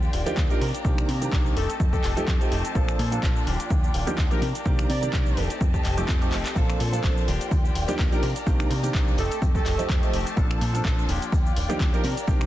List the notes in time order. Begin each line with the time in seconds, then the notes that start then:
Already playing: F4 D5 G5
0.02 A#3 D4 G4, shaker
0.13 D#1, open hi-hat
0.26 D#2 F3 A#3 D4 D#4 G4, closed hi-hat, shaker
0.37 D#2 F3 A#3 D4, kick, clap, shaker
0.50 F3 A#3 D4 D#4 G4 A#4, closed hi-hat, shaker
0.61 C3 D#3 A#3 D4 G4 A#5, open hi-hat
0.73 A#3 D4 G4, closed hi-hat, shaker
0.84 C2 D#3 A#3 C4 D4 G4, kick, shaker
0.98 finger snap, closed hi-hat, shaker
1.08 C3, open hi-hat
1.21 D#3 A#3 C4 D4 G4, closed hi-hat, shaker
1.32 C2 D#3 A#3 D4, kick, clap, shaker
1.46 shaker
1.56 F1 D#3 A3 C4 G4 A4 D#5 A5, open hi-hat
1.69 A3 C4 G4, closed hi-hat, shaker
1.80 F2, kick, shaker
1.93 A3 C4 G4 A4, kick, shaker
2.04 F1, clap, open hi-hat
2.16 F2 F3 A3 C4 D#4 G4, closed hi-hat, shaker
2.28 F2 D#3 A3 C4 G4, kick, clap, shaker
2.40 F3 A3 C4 D#4 G4, closed hi-hat, shaker
2.51 F1 D#3 A3 C4 G4, open hi-hat
2.65 A3 C4 G4, closed hi-hat, shaker
2.75 A#1 F3 A#3 C4 D4 A4 C5, kick, shaker
2.88 finger snap, closed hi-hat, shaker
2.99 A#2, open hi-hat
3.11 F3 A#3 C4 D4 A4, closed hi-hat, shaker
3.23 A#1 F3 C4 D4 A4, kick, clap, shaker
3.36 shaker
3.47 D#1 F3 A#3 D4 F4 G4 D5 G5, open hi-hat
3.59 A#3 D4 G4, closed hi-hat, shaker
3.70 D#2, kick, shaker
3.83 A#3 D4 G4, shaker
3.94 D#1, open hi-hat
4.07 D#2 F3 A#3 D4 D#4 G4, closed hi-hat, shaker
4.18 D#2 F3 A#3 D4 G4, kick, clap, shaker
4.30 F3 A#3 D4 D#4 G4 A#4, closed hi-hat, shaker
4.42 C3 D#3 A#3 D4 G4 D5 A#5, open hi-hat
4.54 A#3 D4 G4, closed hi-hat, shaker
4.65 C2 D#3 A#3 C4 D4 G4, kick, shaker
4.79 finger snap, closed hi-hat, shaker
4.89 C3 D5, open hi-hat
5.02 D#3 A#3 C4 D4 G4, closed hi-hat, shaker
5.13 C2 D#3 A#3 D4 G4, kick, clap, shaker
5.26 shaker
5.37 F1 D#3 A3 C4 G4 D#5 A5, open hi-hat
5.50 A3 C4 G4, closed hi-hat, shaker
5.61 F2, kick, shaker
5.73 A3 C4 G4, kick, shaker
5.85 F1, clap, open hi-hat
5.97 F3 A3 C4 D#4 G4, closed hi-hat, shaker
6.08 F2 D#3 A3 G4, kick, clap, shaker
6.21 F3 A3 C4 D#4 G4, closed hi-hat, shaker
6.32 F1 D#3 A3 C4 G4, clap, open hi-hat
6.45 A3 C4 G4, clap, closed hi-hat, shaker
6.55 A#1 F3 A#3 C4 D4 A4 C5 A5, kick, tambourine, shaker
6.70 finger snap, closed hi-hat, tambourine, shaker
6.80 A#2, open hi-hat, tambourine
6.92 F3 A#3 C4 D4 A4, closed hi-hat, tambourine, shaker
7.03 A#1 F3 C4 D4 A4, kick, clap, tambourine, shaker
7.17 tambourine, shaker
7.27 D#1 F3 A#3 D4 F4 G4 D5 G5, open hi-hat, tambourine
7.41 closed hi-hat, tambourine, shaker
7.51 D#2, kick, tambourine, shaker
7.64 A#3 D4 G4, tambourine, shaker
7.75 D#1, open hi-hat, tambourine
7.88 D#2 F3 A#3 D4 D#4 G4, closed hi-hat, tambourine, shaker
7.99 D#2 F3 A#3 D4, kick, clap, tambourine, shaker
8.11 F3 A#3 D4 D#4 G4 A#4, closed hi-hat, tambourine, shaker
8.23 C3 D#3 A#3 D4 G4 A#5, open hi-hat, tambourine
8.36 A#3 D4 G4, closed hi-hat, tambourine, shaker
8.46 C2 D#3 A#3 C4 D4 G4, kick, tambourine, shaker
8.60 finger snap, closed hi-hat, tambourine, shaker
8.70 C3, open hi-hat, tambourine
8.83 D#3 A#3 C4 D4 G4, closed hi-hat, tambourine, shaker
8.93 C2 D#3 A#3 D4, kick, clap, tambourine, shaker
9.07 tambourine, shaker
9.17 F1 D#3 A3 C4 G4 A4 D#5 A5, open hi-hat, tambourine
9.31 A3 C4 G4, closed hi-hat, tambourine, shaker
9.42 F2, kick, tambourine, shaker
9.55 A3 C4 G4 A4, kick, tambourine, shaker
9.66 F1, clap, open hi-hat, tambourine
9.78 F2 F3 A3 C4 D#4 G4, closed hi-hat, tambourine, shaker
9.89 F2 A3 C4 G4, kick, clap, tambourine, shaker
10.01 F3 A3 C4 D#4 G4, closed hi-hat, tambourine, shaker
10.13 F1 D#3 A3 C4 G4, open hi-hat, tambourine
10.26 A3 C4 G4, closed hi-hat, tambourine, shaker
10.36 A#1 F3 A#3 C4 D4 A4 C5, kick, tambourine, shaker
10.50 finger snap, closed hi-hat, tambourine, shaker
10.61 A#2, open hi-hat, tambourine
10.73 F3 A#3 C4 D4 A4, closed hi-hat, tambourine, shaker
10.84 A#1 F3 C4 D4 A4, kick, clap, tambourine, shaker
10.98 tambourine, shaker
11.08 D#1 F3 A#3 D4 F4 G4 D5 G5, open hi-hat, tambourine
11.22 closed hi-hat, tambourine, shaker
11.32 D#2, kick, tambourine, shaker
11.45 A#3 D4 G4, tambourine, shaker
11.57 D#1, open hi-hat, tambourine
11.69 D#2 F3 A#3 D4 D#4 G4, closed hi-hat, tambourine, shaker
11.80 D#2 F3 A#3 D4 G4, kick, clap, tambourine, shaker
11.93 F3 A#3 D4 D#4 G4 A#4, closed hi-hat, tambourine, shaker
12.04 C3 D#3 A#3 D4 G4 A#5, open hi-hat, tambourine
12.16 A#3 D4 G4, closed hi-hat, tambourine, shaker
12.27 C2 D#3 A#3 C4 D4 G4, kick, tambourine, shaker
12.41 finger snap, closed hi-hat, tambourine, shaker